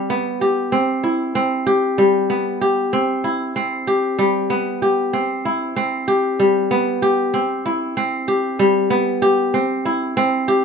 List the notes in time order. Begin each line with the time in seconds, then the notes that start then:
Already playing: G3 C4 E4 G4
0.10 B3
0.41 G4
0.72 C4
1.03 E4
1.35 C4
1.67 G4
1.98 G3
2.30 B3
2.61 G4
2.93 C4
3.24 E4
3.56 C4
3.87 G4
4.19 G3
4.50 B3
4.82 G4
5.13 C4
5.45 E4
5.76 C4
6.08 G4
6.40 G3
6.71 B3
7.02 G4
7.34 C4
7.66 E4
7.97 C4
8.28 G4
8.59 G3
8.90 B3
9.22 G4
9.54 C4
9.85 E4
10.17 C4
10.48 G4